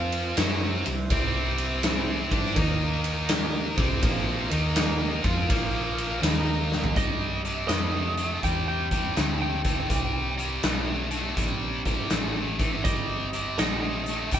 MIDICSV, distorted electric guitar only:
0, 0, Header, 1, 2, 480
1, 0, Start_track
1, 0, Tempo, 731707
1, 722, Time_signature, 4, 2, 24, 8
1, 4563, Tempo, 737101
1, 9408, End_track
2, 0, Start_track
2, 0, Title_t, "Distorted electric guitar"
2, 0, Program_c, 0, 30
2, 0, Note_on_c, 0, 53, 84
2, 0, Note_on_c, 0, 60, 81
2, 0, Note_on_c, 0, 65, 105
2, 239, Note_off_c, 0, 53, 0
2, 242, Note_off_c, 0, 60, 0
2, 242, Note_on_c, 0, 54, 88
2, 244, Note_off_c, 0, 65, 0
2, 251, Note_on_c, 0, 61, 98
2, 254, Note_on_c, 0, 66, 100
2, 548, Note_off_c, 0, 54, 0
2, 552, Note_off_c, 0, 61, 0
2, 553, Note_off_c, 0, 66, 0
2, 565, Note_on_c, 0, 48, 55
2, 568, Note_on_c, 0, 55, 72
2, 693, Note_off_c, 0, 48, 0
2, 694, Note_off_c, 0, 55, 0
2, 726, Note_on_c, 0, 48, 95
2, 732, Note_on_c, 0, 55, 104
2, 733, Note_on_c, 0, 60, 109
2, 1509, Note_off_c, 0, 48, 0
2, 1511, Note_off_c, 0, 55, 0
2, 1512, Note_off_c, 0, 60, 0
2, 1520, Note_on_c, 0, 55, 80
2, 1520, Note_on_c, 0, 62, 97
2, 1528, Note_on_c, 0, 67, 100
2, 1677, Note_off_c, 0, 55, 0
2, 1678, Note_off_c, 0, 62, 0
2, 1682, Note_off_c, 0, 67, 0
2, 1685, Note_on_c, 0, 51, 82
2, 1689, Note_on_c, 0, 58, 86
2, 1690, Note_on_c, 0, 63, 92
2, 2468, Note_off_c, 0, 51, 0
2, 2470, Note_off_c, 0, 58, 0
2, 2471, Note_off_c, 0, 63, 0
2, 2474, Note_on_c, 0, 48, 79
2, 2483, Note_on_c, 0, 60, 83
2, 2484, Note_on_c, 0, 55, 92
2, 2634, Note_off_c, 0, 48, 0
2, 2639, Note_off_c, 0, 55, 0
2, 2639, Note_off_c, 0, 60, 0
2, 2645, Note_on_c, 0, 46, 90
2, 2649, Note_on_c, 0, 53, 107
2, 2655, Note_on_c, 0, 58, 115
2, 2949, Note_off_c, 0, 46, 0
2, 2950, Note_off_c, 0, 53, 0
2, 2954, Note_off_c, 0, 58, 0
2, 2961, Note_on_c, 0, 51, 87
2, 2963, Note_on_c, 0, 58, 91
2, 2967, Note_on_c, 0, 63, 97
2, 3429, Note_off_c, 0, 51, 0
2, 3430, Note_off_c, 0, 58, 0
2, 3433, Note_off_c, 0, 63, 0
2, 3435, Note_on_c, 0, 53, 86
2, 3438, Note_on_c, 0, 60, 94
2, 3445, Note_on_c, 0, 65, 107
2, 3595, Note_off_c, 0, 53, 0
2, 3597, Note_off_c, 0, 60, 0
2, 3601, Note_off_c, 0, 65, 0
2, 3601, Note_on_c, 0, 46, 84
2, 3606, Note_on_c, 0, 53, 98
2, 3612, Note_on_c, 0, 58, 87
2, 4084, Note_off_c, 0, 46, 0
2, 4084, Note_on_c, 0, 51, 87
2, 4091, Note_off_c, 0, 53, 0
2, 4091, Note_off_c, 0, 58, 0
2, 4091, Note_on_c, 0, 58, 98
2, 4095, Note_on_c, 0, 63, 79
2, 4559, Note_off_c, 0, 51, 0
2, 4563, Note_off_c, 0, 58, 0
2, 4565, Note_off_c, 0, 63, 0
2, 4567, Note_on_c, 0, 48, 78
2, 4574, Note_on_c, 0, 55, 87
2, 4848, Note_off_c, 0, 48, 0
2, 4852, Note_off_c, 0, 55, 0
2, 4884, Note_on_c, 0, 48, 66
2, 4887, Note_on_c, 0, 55, 69
2, 5029, Note_off_c, 0, 48, 0
2, 5030, Note_off_c, 0, 55, 0
2, 5043, Note_on_c, 0, 48, 84
2, 5045, Note_on_c, 0, 57, 82
2, 5326, Note_off_c, 0, 48, 0
2, 5327, Note_off_c, 0, 57, 0
2, 5359, Note_on_c, 0, 48, 71
2, 5361, Note_on_c, 0, 57, 77
2, 5506, Note_off_c, 0, 48, 0
2, 5507, Note_off_c, 0, 57, 0
2, 5523, Note_on_c, 0, 48, 80
2, 5524, Note_on_c, 0, 55, 71
2, 5805, Note_off_c, 0, 48, 0
2, 5806, Note_off_c, 0, 55, 0
2, 5841, Note_on_c, 0, 48, 60
2, 5844, Note_on_c, 0, 55, 66
2, 5987, Note_off_c, 0, 48, 0
2, 5988, Note_off_c, 0, 55, 0
2, 5999, Note_on_c, 0, 48, 67
2, 6005, Note_on_c, 0, 57, 81
2, 6284, Note_off_c, 0, 48, 0
2, 6287, Note_off_c, 0, 57, 0
2, 6315, Note_on_c, 0, 48, 66
2, 6317, Note_on_c, 0, 57, 63
2, 6464, Note_off_c, 0, 48, 0
2, 6465, Note_off_c, 0, 57, 0
2, 6473, Note_on_c, 0, 48, 76
2, 6480, Note_on_c, 0, 55, 89
2, 6760, Note_off_c, 0, 48, 0
2, 6764, Note_off_c, 0, 55, 0
2, 6789, Note_on_c, 0, 48, 70
2, 6794, Note_on_c, 0, 55, 72
2, 6941, Note_off_c, 0, 48, 0
2, 6943, Note_off_c, 0, 55, 0
2, 6956, Note_on_c, 0, 48, 74
2, 6959, Note_on_c, 0, 57, 79
2, 7242, Note_off_c, 0, 48, 0
2, 7244, Note_off_c, 0, 57, 0
2, 7266, Note_on_c, 0, 48, 65
2, 7268, Note_on_c, 0, 57, 76
2, 7420, Note_off_c, 0, 48, 0
2, 7420, Note_off_c, 0, 57, 0
2, 7430, Note_on_c, 0, 48, 71
2, 7433, Note_on_c, 0, 55, 78
2, 7720, Note_off_c, 0, 48, 0
2, 7721, Note_off_c, 0, 55, 0
2, 7753, Note_on_c, 0, 48, 66
2, 7756, Note_on_c, 0, 55, 67
2, 7904, Note_off_c, 0, 48, 0
2, 7905, Note_off_c, 0, 55, 0
2, 7915, Note_on_c, 0, 48, 77
2, 7921, Note_on_c, 0, 57, 86
2, 8203, Note_off_c, 0, 48, 0
2, 8206, Note_off_c, 0, 57, 0
2, 8229, Note_on_c, 0, 48, 72
2, 8233, Note_on_c, 0, 57, 75
2, 8382, Note_off_c, 0, 48, 0
2, 8384, Note_off_c, 0, 57, 0
2, 8397, Note_on_c, 0, 48, 90
2, 8398, Note_on_c, 0, 55, 86
2, 8684, Note_off_c, 0, 48, 0
2, 8685, Note_off_c, 0, 55, 0
2, 8718, Note_on_c, 0, 48, 74
2, 8721, Note_on_c, 0, 55, 90
2, 8867, Note_off_c, 0, 48, 0
2, 8868, Note_off_c, 0, 55, 0
2, 8886, Note_on_c, 0, 48, 79
2, 8889, Note_on_c, 0, 57, 84
2, 9169, Note_off_c, 0, 48, 0
2, 9171, Note_off_c, 0, 57, 0
2, 9204, Note_on_c, 0, 57, 74
2, 9205, Note_on_c, 0, 48, 67
2, 9350, Note_off_c, 0, 57, 0
2, 9351, Note_off_c, 0, 48, 0
2, 9358, Note_on_c, 0, 48, 60
2, 9360, Note_on_c, 0, 55, 89
2, 9408, Note_off_c, 0, 48, 0
2, 9408, Note_off_c, 0, 55, 0
2, 9408, End_track
0, 0, End_of_file